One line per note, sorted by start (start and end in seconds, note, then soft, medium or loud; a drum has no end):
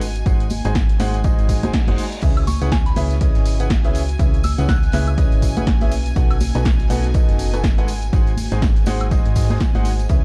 0.00 0.23 G#1 loud
0.00 7.87 F#4 medium
0.00 7.88 D#5 medium
0.00 2.21 G#5 medium
0.00 open hi-hat medium
0.00 tambourine medium
0.15 2.23 C5 medium
0.15 closed hi-hat soft
0.15 tambourine soft
0.26 0.61 G#1 loud
0.26 0.44 G#3 medium
0.26 0.44 D#4 medium
0.26 0.44 F#4 medium
0.26 0.44 G#4 medium
0.26 0.44 C5 medium
0.26 0.44 F#5 medium
0.26 kick loud
0.26 closed hi-hat medium
0.26 tambourine soft
0.35 3.70 G#4 medium
0.40 closed hi-hat soft
0.40 tambourine soft
0.50 open hi-hat loud
0.50 tambourine medium
0.50 high conga medium
0.65 0.97 G#1 loud
0.65 0.74 G#3 medium
0.65 0.74 D#4 medium
0.65 0.74 F#4 medium
0.65 0.74 G#4 medium
0.65 0.74 C5 medium
0.65 0.74 G#5 loud
0.65 closed hi-hat soft
0.65 tambourine soft
0.75 kick loud
0.75 snare loud
0.75 closed hi-hat medium
0.75 tambourine soft
0.89 closed hi-hat soft
0.89 tambourine soft
1.00 1.35 G#1 loud
1.00 1.18 G#3 medium
1.00 1.18 D#4 medium
1.00 1.18 F#4 medium
1.00 1.18 G#4 medium
1.00 1.18 C5 medium
1.00 1.18 F#5 medium
1.00 snare medium
1.00 open hi-hat medium
1.00 tambourine medium
1.00 high conga medium
1.14 closed hi-hat soft
1.14 tambourine soft
1.24 1.60 G#3 medium
1.24 1.60 D#4 medium
1.24 1.60 F#4 medium
1.24 1.60 G#4 medium
1.24 1.60 C5 medium
1.24 1.60 D#5 medium
1.24 kick loud
1.24 closed hi-hat medium
1.24 tambourine medium
1.24 reverse cymbal medium
1.39 1.71 G#1 medium
1.39 closed hi-hat soft
1.39 tambourine soft
1.49 kick medium
1.49 open hi-hat loud
1.49 tambourine medium
1.63 1.72 G#3 medium
1.63 1.72 D#4 medium
1.63 1.72 F#4 medium
1.63 1.72 G#4 medium
1.63 1.72 C5 medium
1.63 1.72 G#5 medium
1.63 closed hi-hat soft
1.63 tambourine soft
1.63 high conga medium
1.73 kick loud
1.73 snare loud
1.73 closed hi-hat medium
1.73 tambourine soft
1.87 1.97 F#1 loud
1.87 2.03 G#3 medium
1.87 2.03 D#4 medium
1.87 2.03 F#4 medium
1.87 2.03 G#4 medium
1.87 2.03 C5 medium
1.87 2.03 F#5 medium
1.87 closed hi-hat soft
1.87 tambourine soft
1.87 high conga medium
1.98 open hi-hat loud
1.98 tambourine medium
2.12 closed hi-hat soft
2.12 tambourine soft
2.23 2.58 C#2 loud
2.23 2.41 C#3 medium
2.23 2.41 C#4 medium
2.23 7.88 C#4 medium
2.23 2.41 E4 medium
2.23 2.41 G#4 medium
2.23 2.41 B4 medium
2.23 2.41 E5 medium
2.23 10.08 G#5 medium
2.23 kick loud
2.23 closed hi-hat medium
2.23 crash medium
2.23 tambourine soft
2.37 closed hi-hat soft
2.37 tambourine soft
2.37 high woodblock medium
2.46 7.88 B4 medium
2.46 2.62 C#6 medium
2.46 closed hi-hat medium
2.46 open hi-hat loud
2.46 tambourine medium
2.46 high conga medium
2.62 2.94 C#2 loud
2.62 2.70 C#3 medium
2.62 2.70 C#4 medium
2.62 2.70 E4 medium
2.62 2.70 G#4 medium
2.62 2.70 B4 medium
2.62 2.70 F#5 medium
2.62 closed hi-hat soft
2.62 tambourine soft
2.72 2.83 G#5 medium
2.72 kick loud
2.72 snare loud
2.72 closed hi-hat medium
2.72 tambourine medium
2.86 2.97 B5 medium
2.86 snare soft
2.86 closed hi-hat soft
2.86 tambourine soft
2.96 3.32 C#2 medium
2.96 3.14 C#3 medium
2.96 3.14 C#4 medium
2.96 3.14 E4 medium
2.96 3.14 G#4 medium
2.96 3.14 B4 medium
2.96 3.14 E5 medium
2.96 closed hi-hat medium
2.96 open hi-hat loud
2.96 tambourine medium
2.96 high conga medium
3.11 snare soft
3.11 closed hi-hat soft
3.11 tambourine soft
3.21 3.57 C#3 medium
3.21 3.57 C#4 medium
3.21 3.57 E4 medium
3.21 3.57 G#4 medium
3.21 3.57 B4 medium
3.21 3.57 D#5 medium
3.21 kick loud
3.21 closed hi-hat medium
3.21 tambourine medium
3.35 3.86 G#1 medium
3.35 snare medium
3.35 closed hi-hat soft
3.35 tambourine soft
3.45 closed hi-hat medium
3.45 open hi-hat loud
3.45 tambourine medium
3.60 3.69 C#3 medium
3.60 3.69 C#4 medium
3.60 3.69 E4 medium
3.60 3.69 G#4 medium
3.60 3.69 B4 medium
3.60 3.69 F#5 medium
3.60 closed hi-hat soft
3.60 tambourine soft
3.70 kick loud
3.70 snare loud
3.70 closed hi-hat medium
3.70 tambourine medium
3.84 4.17 C#2 medium
3.84 4.00 C#3 medium
3.84 4.00 C#4 medium
3.84 4.00 E4 medium
3.84 4.00 G#4 medium
3.84 4.00 B4 medium
3.84 4.00 E5 medium
3.84 snare soft
3.84 closed hi-hat soft
3.84 tambourine soft
3.95 closed hi-hat medium
3.95 open hi-hat loud
3.95 tambourine medium
4.08 closed hi-hat soft
4.08 tambourine soft
4.19 4.55 C#2 loud
4.19 4.37 C#3 medium
4.19 4.37 C#4 medium
4.19 4.37 E4 medium
4.19 4.37 G#4 medium
4.19 4.37 B4 medium
4.19 4.37 E5 medium
4.19 kick loud
4.19 closed hi-hat medium
4.19 tambourine soft
4.34 closed hi-hat soft
4.34 tambourine soft
4.43 4.67 E6 medium
4.43 closed hi-hat medium
4.43 open hi-hat loud
4.43 tambourine medium
4.43 high conga medium
4.58 4.91 C#2 loud
4.58 4.67 C#3 medium
4.58 4.67 C#4 medium
4.58 4.67 E4 medium
4.58 4.67 G#4 medium
4.58 4.67 B4 medium
4.58 4.67 F#5 loud
4.58 snare soft
4.58 closed hi-hat soft
4.58 tambourine soft
4.69 5.18 F#6 medium
4.69 kick loud
4.69 snare loud
4.69 closed hi-hat medium
4.69 tambourine medium
4.83 closed hi-hat soft
4.83 tambourine soft
4.92 5.29 C#2 medium
4.92 5.11 C#3 medium
4.92 5.11 C#4 medium
4.92 5.11 E4 medium
4.92 5.11 G#4 medium
4.92 5.11 B4 medium
4.92 5.11 E5 medium
4.92 snare medium
4.92 closed hi-hat medium
4.92 open hi-hat loud
4.92 tambourine medium
4.92 high conga medium
5.07 closed hi-hat soft
5.07 tambourine soft
5.07 high woodblock medium
5.18 5.53 C#3 medium
5.18 5.53 C#4 medium
5.18 5.53 E4 medium
5.18 5.53 G#4 medium
5.18 5.53 B4 medium
5.18 5.53 D#5 medium
5.18 kick loud
5.18 closed hi-hat medium
5.18 tambourine medium
5.32 5.83 G#1 medium
5.32 closed hi-hat soft
5.32 tambourine soft
5.42 kick medium
5.42 closed hi-hat medium
5.42 open hi-hat loud
5.42 tambourine medium
5.57 5.65 C#3 medium
5.57 5.65 C#4 medium
5.57 5.65 E4 medium
5.57 5.65 G#4 medium
5.57 5.65 B4 medium
5.57 5.65 F#5 medium
5.57 closed hi-hat soft
5.57 tambourine soft
5.57 high conga medium
5.67 kick loud
5.67 snare loud
5.67 closed hi-hat medium
5.67 tambourine medium
5.81 6.14 B1 medium
5.81 5.90 C#4 medium
5.81 5.90 E4 medium
5.81 5.90 G#4 medium
5.81 5.90 B4 medium
5.81 5.90 E5 medium
5.81 snare medium
5.81 closed hi-hat soft
5.81 tambourine soft
5.81 high conga medium
5.92 closed hi-hat medium
5.92 open hi-hat loud
5.92 tambourine loud
6.06 closed hi-hat soft
6.06 tambourine soft
6.16 6.51 B1 loud
6.16 6.34 B2 medium
6.16 6.34 D#4 medium
6.16 6.34 F#4 medium
6.16 6.34 A4 medium
6.16 6.34 B4 medium
6.16 6.34 F#5 medium
6.16 kick loud
6.16 closed hi-hat medium
6.16 tambourine soft
6.31 closed hi-hat soft
6.31 tambourine soft
6.31 high woodblock medium
6.40 closed hi-hat medium
6.40 open hi-hat loud
6.40 tambourine loud
6.40 high conga medium
6.55 6.87 B1 loud
6.55 6.64 B2 medium
6.55 6.64 D#4 medium
6.55 6.64 F#4 medium
6.55 6.64 A4 medium
6.55 6.64 B4 medium
6.55 6.64 G#5 medium
6.55 closed hi-hat soft
6.55 tambourine soft
6.65 kick loud
6.65 snare loud
6.65 closed hi-hat medium
6.65 tambourine medium
6.79 snare soft
6.79 closed hi-hat soft
6.79 tambourine soft
6.90 7.25 B1 loud
6.90 7.08 B2 medium
6.90 7.08 D#4 medium
6.90 7.08 F#4 medium
6.90 7.08 A4 medium
6.90 7.08 B4 medium
6.90 7.08 F#5 medium
6.90 closed hi-hat medium
6.90 open hi-hat loud
6.90 tambourine medium
6.90 high conga medium
7.04 snare soft
7.04 closed hi-hat soft
7.04 tambourine soft
7.14 7.50 B2 medium
7.14 7.50 D#4 medium
7.14 7.50 F#4 medium
7.14 7.50 A4 medium
7.14 7.50 B4 medium
7.14 7.50 D#5 medium
7.14 kick loud
7.14 closed hi-hat medium
7.14 tambourine medium
7.28 7.79 F#1 medium
7.28 snare soft
7.28 closed hi-hat soft
7.28 tambourine soft
7.39 closed hi-hat medium
7.39 open hi-hat loud
7.39 tambourine medium
7.53 7.62 B2 medium
7.53 7.62 D#4 medium
7.53 7.62 F#4 medium
7.53 7.62 A4 medium
7.53 7.62 B4 medium
7.53 7.62 G#5 medium
7.53 closed hi-hat soft
7.53 tambourine soft
7.64 kick loud
7.64 snare loud
7.64 closed hi-hat medium
7.64 tambourine medium
7.78 8.10 G#1 loud
7.78 7.87 G#3 medium
7.78 7.87 D#4 medium
7.78 7.87 F#4 medium
7.78 7.87 A4 medium
7.78 7.87 B4 medium
7.78 7.87 F#5 medium
7.78 snare soft
7.78 closed hi-hat soft
7.78 tambourine soft
7.88 10.24 F#4 medium
7.88 closed hi-hat medium
7.88 open hi-hat loud
7.88 tambourine medium
8.02 closed hi-hat soft
8.02 tambourine soft
8.12 8.48 G#1 loud
8.12 8.31 G#3 medium
8.12 8.31 D#4 medium
8.12 8.31 F#4 medium
8.12 8.31 G#4 medium
8.12 10.10 C5 medium
8.12 8.31 C5 medium
8.12 8.31 F#5 medium
8.12 kick loud
8.12 closed hi-hat medium
8.12 tambourine medium
8.17 10.24 G#4 medium
8.27 closed hi-hat soft
8.27 tambourine soft
8.37 closed hi-hat medium
8.37 open hi-hat loud
8.37 tambourine medium
8.37 high conga medium
8.51 8.84 G#1 loud
8.51 8.61 G#3 medium
8.51 8.60 D#4 medium
8.51 8.60 F#4 medium
8.51 8.60 G#4 medium
8.51 8.61 C5 medium
8.51 8.60 G#5 medium
8.51 snare soft
8.51 closed hi-hat soft
8.51 tambourine soft
8.56 10.24 D#5 medium
8.62 kick loud
8.62 snare loud
8.62 closed hi-hat medium
8.62 tambourine medium
8.76 closed hi-hat soft
8.76 tambourine soft
8.86 9.22 G#1 medium
8.86 9.05 G#3 medium
8.86 9.05 D#4 medium
8.86 9.05 F#4 medium
8.86 9.05 G#4 medium
8.86 9.05 C5 medium
8.86 9.05 F#5 medium
8.86 snare medium
8.86 closed hi-hat medium
8.86 open hi-hat loud
8.86 tambourine medium
8.86 high conga medium
9.00 closed hi-hat soft
9.00 tambourine soft
9.00 high woodblock medium
9.11 9.47 G#3 medium
9.11 9.47 D#4 medium
9.11 9.47 F#4 medium
9.11 9.47 G#4 medium
9.11 9.47 C5 medium
9.11 9.47 D#5 medium
9.11 kick loud
9.11 closed hi-hat medium
9.11 tambourine medium
9.25 9.58 G#2 medium
9.25 closed hi-hat soft
9.25 tambourine soft
9.35 kick medium
9.35 snare medium
9.35 closed hi-hat medium
9.35 open hi-hat loud
9.35 tambourine medium
9.42 snare medium
9.42 closed hi-hat medium
9.50 9.59 G#3 medium
9.50 9.59 D#4 medium
9.50 9.59 F#4 medium
9.50 9.59 G#4 medium
9.50 9.59 C5 medium
9.50 9.59 G#5 medium
9.50 snare medium
9.50 closed hi-hat soft
9.50 closed hi-hat medium
9.50 tambourine soft
9.50 high conga medium
9.55 snare medium
9.55 closed hi-hat medium
9.60 kick loud
9.60 snare loud
9.60 closed hi-hat medium
9.60 tambourine medium
9.75 10.07 G#1 loud
9.75 9.90 G#3 medium
9.75 9.90 D#4 medium
9.75 9.90 F#4 medium
9.75 9.90 G#4 medium
9.75 9.90 C5 medium
9.75 9.90 F#5 medium
9.75 snare medium
9.75 closed hi-hat soft
9.75 tambourine soft
9.75 high conga medium
9.85 closed hi-hat medium
9.85 open hi-hat loud
9.85 tambourine loud
9.99 closed hi-hat soft
9.99 tambourine soft
10.09 10.24 C#2 loud
10.09 10.24 C#3 medium
10.09 10.24 C#4 medium
10.09 10.24 E4 medium
10.09 10.24 G#4 medium
10.09 10.24 B4 medium
10.09 10.24 E5 medium
10.09 10.24 G#5 medium
10.09 kick loud
10.09 closed hi-hat medium
10.09 tambourine soft